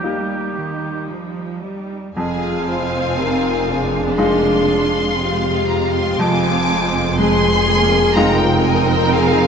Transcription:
0.00 2.12 D#2 soft
0.00 1.92 G3 soft
0.00 0.03 A#3 soft
0.00 2.12 A#3 soft
0.00 1.92 D#4 soft
0.00 2.13 D#4 soft
0.00 1.06 G4 medium
0.04 0.57 G3 soft
0.04 2.13 G4 soft
0.57 1.10 D#3 soft
1.10 1.64 F3 soft
1.64 2.17 G3 soft
2.15 6.16 F1 medium
2.15 6.16 F2 medium
2.15 4.14 C4 medium
2.15 3.15 F4 medium
2.15 2.63 G#4 medium
2.15 2.65 G#4 medium
2.15 4.14 F5 medium
2.15 4.14 G#5 medium
2.68 4.18 F4 medium
2.68 3.18 C5 medium
3.18 4.78 C3 soft
3.18 3.69 D#4 medium
3.18 3.68 A#4 medium
3.67 5.18 D4 medium
3.67 5.17 G#4 medium
4.17 6.16 G#3 soft
4.17 4.67 A#3 medium
4.17 6.16 D#4 medium
4.17 6.16 F4 medium
4.17 7.15 F4 medium
4.17 6.16 F5 medium
4.17 5.68 C6 medium
4.68 7.18 G#3 medium
5.17 8.16 C4 medium
5.17 6.19 G4 medium
5.68 5.94 A#5 medium
5.94 6.19 C6 medium
6.19 9.47 F1 medium
6.19 9.47 F2 medium
6.19 7.19 F4 medium
6.19 7.18 G#5 medium
6.19 7.18 D6 loud
7.18 8.15 G#3 medium
7.18 7.66 G#3 medium
7.18 8.14 G#4 medium
7.18 7.66 G#4 medium
7.18 8.14 G#5 medium
7.18 8.13 C6 loud
7.68 8.16 A#3 medium
7.68 8.15 G#4 medium
8.15 9.47 G#3 medium
8.15 9.47 C4 medium
8.15 9.47 D#4 medium
8.15 9.12 F4 medium
8.15 9.47 F4 medium
8.15 9.47 A#4 medium
8.15 9.11 G5 medium
8.15 8.40 A#5 loud
8.40 8.64 G5 loud
8.63 8.88 G#5 medium
8.88 9.11 G5 loud
9.12 9.47 G#4 medium
9.12 9.47 F5 medium
9.12 9.47 G#5 loud

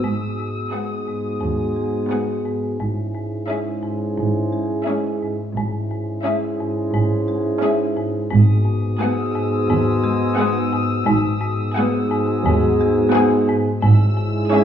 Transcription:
0.00 2.76 F#4 soft
0.00 0.62 D#6 soft
0.00 0.62 E6 soft
0.04 0.59 G#1 medium
0.04 0.59 G#2 medium
0.04 2.76 G#2 medium
0.04 0.25 G#2 medium
0.04 2.76 G#3 medium
0.04 2.76 B3 soft
0.39 0.60 G#2 soft
0.62 1.72 D#6 soft
0.72 0.94 G#3 soft
0.72 1.25 B3 soft
0.72 1.24 G#4 soft
0.72 1.24 F#5 soft
1.07 1.28 G#2 soft
1.41 1.97 D#2 medium
1.41 1.62 G#2 soft
1.76 1.97 G#3 soft
2.11 2.32 G#3 medium
2.11 2.62 B3 medium
2.11 2.62 G#4 soft
2.11 2.62 F#5 medium
2.45 2.66 G#2 soft
2.80 3.35 G#1 medium
2.80 3.01 G#2 medium
2.80 3.35 G#2 medium
2.80 5.38 G#2 medium
2.80 5.38 G#3 medium
2.80 5.37 C#4 medium
2.80 5.37 E4 soft
3.15 3.35 G#2 soft
3.48 3.69 G#3 soft
3.48 4.00 C#4 medium
3.48 4.00 G#4 medium
3.48 4.00 E5 medium
3.83 4.04 G#2 soft
4.17 4.72 G#1 medium
4.17 4.39 G#2 medium
4.17 4.73 G#2 medium
4.52 4.73 G#3 soft
4.85 5.08 G#3 medium
4.85 5.38 C#4 medium
4.85 5.38 G#4 medium
4.85 5.37 E5 medium
5.22 5.43 G#2 soft
5.54 6.10 G#1 medium
5.54 8.27 G#2 medium
5.54 6.10 G#2 medium
5.54 5.77 G#2 medium
5.54 8.28 G#3 medium
5.54 8.27 C#4 medium
5.54 8.27 E4 medium
5.91 6.12 G#2 soft
6.23 6.46 G#3 soft
6.23 6.76 C#4 medium
6.23 6.75 G#4 medium
6.23 6.76 E5 medium
6.60 6.80 G#2 medium
6.94 7.48 G#1 medium
6.94 7.15 G#2 medium
6.94 7.49 G#2 medium
7.28 7.49 G#3 soft
7.61 7.83 G#3 medium
7.61 8.14 C#4 medium
7.61 8.13 G#4 medium
7.61 8.14 E5 medium
7.97 8.17 G#2 medium
8.31 8.86 G#1 medium
8.31 8.52 G#2 medium
8.31 8.87 G#2 medium
8.31 11.04 G#2 medium
8.31 11.04 G#3 medium
8.31 11.04 B3 medium
8.31 11.04 F#4 medium
8.31 13.45 D#6 medium
8.65 8.86 G#2 medium
9.00 9.21 G#3 medium
9.00 9.52 B3 medium
9.00 9.52 G#4 medium
9.00 9.52 F#5 medium
9.00 13.45 E6 medium
9.35 9.56 G#2 medium
9.69 10.24 D#2 medium
9.69 9.90 G#2 medium
10.04 10.25 G#3 medium
10.37 10.59 G#3 medium
10.37 10.90 B3 medium
10.37 10.90 G#4 medium
10.37 10.89 F#5 medium
10.73 10.93 G#2 medium
11.06 11.62 G#1 medium
11.06 11.27 G#2 loud
11.06 11.62 G#2 loud
11.06 13.68 G#2 medium
11.06 13.68 G#3 medium
11.06 13.66 B3 medium
11.06 13.66 F#4 medium
11.41 11.62 G#2 medium
11.76 11.97 G#3 medium
11.76 12.28 B3 medium
11.76 12.28 G#4 medium
11.76 12.28 F#5 medium
12.11 12.32 G#2 medium
12.45 13.00 D#2 medium
12.45 12.66 G#2 medium
12.80 13.01 G#3 medium
13.13 13.35 G#3 medium
13.13 13.65 B3 medium
13.13 13.65 G#4 medium
13.13 13.65 F#5 medium
13.48 13.69 G#2 medium
13.82 14.38 G#1 loud
13.82 14.03 G#2 medium
13.82 14.38 G#2 medium
13.82 14.64 G#2 loud
13.82 14.64 G#3 loud
13.82 14.64 C#4 medium
13.82 14.64 E4 medium
13.82 14.64 E6 medium
14.17 14.38 G#2 medium
14.51 14.64 G#3 medium
14.51 14.64 C#4 medium
14.51 14.64 G#4 medium
14.51 14.64 E5 medium
14.51 14.64 G#6 medium

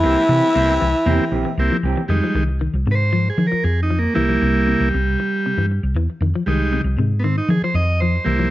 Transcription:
0.00 1.85 E3 loud
0.00 0.19 E3 medium
0.00 0.20 A#3 medium
0.00 0.22 C4 medium
0.00 1.85 E4 loud
0.00 1.84 E5 loud
0.00 muted clean electric guitar stroke medium
0.04 0.15 C2 medium
0.04 0.22 A#3 medium
0.04 0.20 C4 medium
0.04 0.23 E4 medium
0.04 0.20 G4 medium
0.04 0.23 G4 medium
0.29 0.40 C3 loud
0.29 0.45 E3 medium
0.29 0.43 E3 medium
0.29 0.45 A#3 medium
0.29 0.45 C4 medium
0.29 0.46 G4 medium
0.54 0.77 C2 loud
0.54 0.69 C3 medium
0.54 0.73 A#3 medium
0.54 0.74 C4 medium
0.54 0.74 E4 medium
0.54 0.74 G4 loud
0.68 0.84 A#3 soft
0.68 0.84 C4 medium
0.68 0.84 G4 medium
0.81 0.92 C2 medium
0.81 0.95 E3 medium
1.06 1.17 E2 loud
1.06 1.14 C3 medium
1.06 1.23 E3 medium
1.06 1.25 A#3 medium
1.06 1.22 A#3 medium
1.06 1.25 C4 medium
1.06 1.23 C4 medium
1.06 1.25 E4 medium
1.06 1.25 G4 loud
1.06 1.23 G4 medium
1.19 1.34 E3 medium
1.19 muted fingered electric bass stroke soft
1.31 1.43 A#1 medium
1.31 1.48 E3 medium
1.31 1.48 A#3 medium
1.31 1.48 C4 medium
1.31 1.48 G4 medium
1.45 1.59 E3 medium
1.58 1.69 C2 medium
1.58 1.77 A#3 loud
1.58 1.77 C4 medium
1.58 1.77 E4 loud
1.58 1.77 G4 loud
1.72 1.86 F3 medium
1.83 1.94 C2 medium
1.83 1.99 E3 medium
1.83 2.00 A#3 medium
1.83 2.00 C4 medium
1.83 2.00 G4 medium
1.97 2.04 E3 medium
2.08 2.20 F2 medium
2.08 2.17 D#3 medium
2.08 2.43 G3 medium
2.08 2.44 G#3 medium
2.08 2.44 D#4 medium
2.24 2.30 F3 medium
2.34 2.67 C2 medium
2.34 2.49 D#3 medium
2.61 2.75 D#3 medium
2.74 2.84 C2 medium
2.87 3.29 G#2 medium
2.87 3.01 C3 medium
2.91 2.95 B4 medium
2.91 3.29 C5 loud
3.13 3.26 F3 medium
3.30 3.46 G#4 medium
3.38 3.45 D#3 medium
3.38 3.49 F3 medium
3.47 3.64 A#4 medium
3.52 3.65 F3 medium
3.52 muted fingered electric bass stroke soft
3.64 4.06 F2 loud
3.64 3.81 G#4 medium
3.83 3.99 D#4 medium
3.91 4.04 F3 medium
3.99 4.14 A#3 medium
4.14 4.37 C2 medium
4.14 4.23 E3 medium
4.14 5.66 G3 medium
4.14 4.89 A#3 soft
4.14 4.89 E4 medium
4.29 4.36 F3 medium
4.42 4.73 C2 loud
4.42 4.56 C3 medium
4.68 4.81 C3 medium
4.80 4.91 C2 medium
4.94 5.15 C2 medium
4.94 5.08 C3 medium
5.20 muted clean electric guitar stroke medium
5.46 5.53 C3 medium
5.57 5.79 G2 medium
5.57 5.72 E3 medium
5.83 5.94 C2 medium
5.95 6.06 E2 medium
5.95 6.10 E3 medium
6.21 6.32 F2 medium
6.21 6.29 D#3 medium
6.36 6.42 F3 medium
6.46 6.79 C2 medium
6.46 6.62 D#3 medium
6.46 6.81 G3 medium
6.46 6.82 G#3 medium
6.46 6.82 D#4 medium
6.73 6.87 C3 medium
6.84 6.95 C2 medium
6.97 7.40 G#2 medium
6.97 7.12 C3 medium
7.19 7.23 B3 medium
7.24 7.38 D#3 medium
7.24 7.36 C4 medium
7.38 7.49 D#4 medium
7.49 7.57 D#3 medium
7.49 7.60 F3 medium
7.49 7.62 G#4 medium
7.62 7.78 F3 medium
7.62 7.75 C5 medium
7.62 muted fingered electric bass stroke soft
7.74 8.17 F2 loud
7.74 8.00 D#5 medium
8.00 8.16 F3 medium
8.00 8.50 C5 medium
8.24 8.47 C2 medium
8.24 8.34 E3 medium
8.24 8.50 G3 medium
8.24 8.50 A#3 medium
8.24 8.50 E4 medium
8.39 8.46 F3 medium

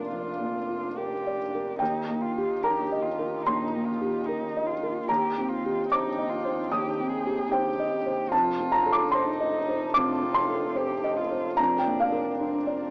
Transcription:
0.00 1.84 F1 medium
0.00 1.82 F2 medium
0.00 0.40 A#3 soft
0.00 1.80 A#3 soft
0.00 1.80 D4 soft
0.00 0.69 F4 soft
0.00 1.76 F4 soft
0.00 0.98 A#4 soft
0.00 1.27 D5 soft
0.00 1.35 A#5 medium
0.11 0.57 F3 soft
0.11 0.99 F4 medium
0.40 0.85 A#3 soft
0.69 1.14 F4 soft
0.98 1.78 G4 medium
0.98 1.42 A#4 soft
1.27 1.70 D5 soft
1.55 1.81 A#4 soft
1.79 3.41 D#2 soft
1.79 5.09 D#2 medium
1.79 5.05 A#3 soft
1.79 2.23 D#4 medium
1.79 5.08 D#4 soft
1.79 5.09 G4 soft
1.79 2.58 G5 medium
2.09 2.52 A#3 soft
2.21 2.64 F4 medium
2.38 2.81 G4 soft
2.62 3.03 G4 medium
2.62 3.07 A#4 soft
2.62 3.41 A#5 medium
2.92 3.35 D#5 soft
3.02 3.44 F4 medium
3.19 3.62 A#4 soft
3.43 3.87 D#4 medium
3.43 5.05 C6 medium
3.47 3.90 A#2 soft
3.75 4.18 A#3 soft
3.85 4.27 F4 soft
4.01 4.44 G4 soft
4.26 4.68 D#4 medium
4.26 4.71 A#4 soft
4.57 4.99 D#5 soft
4.66 5.09 F4 medium
4.83 5.09 A#4 soft
5.07 8.35 D#2 medium
5.07 6.67 D#2 soft
5.07 8.32 C4 soft
5.07 8.29 D#4 soft
5.07 5.50 G4 medium
5.07 8.28 G5 soft
5.07 5.86 A#5 medium
5.38 5.80 C4 soft
5.48 5.89 F4 medium
5.66 6.08 G4 soft
5.89 6.31 D#4 medium
5.89 6.34 C5 soft
5.89 6.68 D6 medium
6.18 6.61 D#5 soft
6.29 6.72 F4 medium
6.45 6.87 C5 soft
6.71 8.29 D#2 soft
6.71 7.11 G4 medium
6.71 7.48 D#6 medium
7.00 7.42 C4 soft
7.10 7.52 G#4 medium
7.26 7.69 G4 soft
7.51 8.31 G4 medium
7.51 7.95 C5 soft
7.51 8.28 G5 medium
7.79 8.22 D#5 soft
8.06 8.32 C5 soft
8.30 12.90 F1 medium
8.30 9.91 F2 medium
8.30 11.54 C4 medium
8.30 11.53 D#4 soft
8.30 9.14 F4 medium
8.30 11.57 A4 medium
8.30 8.69 A5 medium
8.60 9.03 C4 soft
8.72 8.91 A#5 medium
8.86 9.29 A4 soft
8.92 9.12 D6 medium
9.12 9.95 D#4 medium
9.12 9.57 C5 medium
9.12 9.90 C6 medium
9.40 9.84 D#5 medium
9.68 10.11 C5 medium
9.93 10.39 C3 soft
9.93 10.78 F4 medium
9.93 10.32 D6 medium
10.23 10.66 C4 soft
10.34 11.53 C6 medium
10.49 10.92 A4 medium
10.75 11.18 G4 medium
10.75 11.19 C5 medium
11.04 11.47 D#5 medium
11.16 11.60 F4 medium
11.31 11.58 C5 soft
11.57 12.90 F2 medium
11.57 12.90 A#3 medium
11.57 12.90 D4 medium
11.57 12.39 D4 medium
11.57 12.90 A#4 medium
11.57 11.76 A#5 medium
11.79 11.97 G5 medium
11.86 12.29 A#3 soft
12.00 12.90 F5 medium
12.12 12.56 A#4 soft
12.40 12.90 C4 medium
12.40 12.85 D4 soft
12.67 12.90 D5 soft

